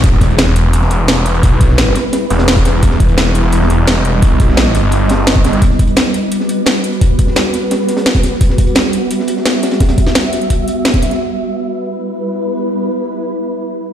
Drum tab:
HH |x-xxx-x-x-x-x-xx|x-x-x-x-x-xxxxx-|x-xxx-x-x-x-x-x-|x-x-x-x-x-x-xxxx|
SD |-o--oo---o--o---|---oo-o-o-oooooo|-o--oo---o--o---|---oo-o---o-o-oo|
BD |o-o-------------|o-o----------o--|o-o-------------|o-o----------o--|

HH |x-xxx-x-x-x-x-xx|x-x-x-x-x-xxxxx-|x-xxx-x-x-x-x-xx|xxx-x-xxx-x-xxxx|
SD |-o--oo---o--o---|---oo-o-o-oooooo|-o--oo---o-oo-oo|oo-oo-o-----o-oo|
BD |o-o-------------|o-o----------o--|o-o-------------|o-o-----o----o--|

HH |----------------|----------------|
SD |----------------|----------------|
BD |----------------|----------------|